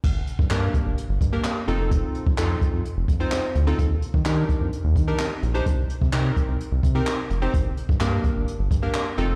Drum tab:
CC |x---------------|----------------|----------------|----------------|
HH |--x-x-x-x-x-x-x-|x-x-x-x-x-x-x-x-|x-x-x-x-x-x-x-x-|x-x-x-x-x-x-x-x-|
CP |----x-------x---|----x-------x---|----x-------x---|----x-------x---|
SD |----o-------o---|----o-------o---|----o-------o---|----o-------o---|
BD |o--o--o---o-----|o--o--o---o-----|o--o--o---o-----|o--o--o---o-----|

CC |----------------|
HH |x-x-x-x-x-x-x-x-|
CP |----x-------x---|
SD |----o-------o---|
BD |o--o--o---o-----|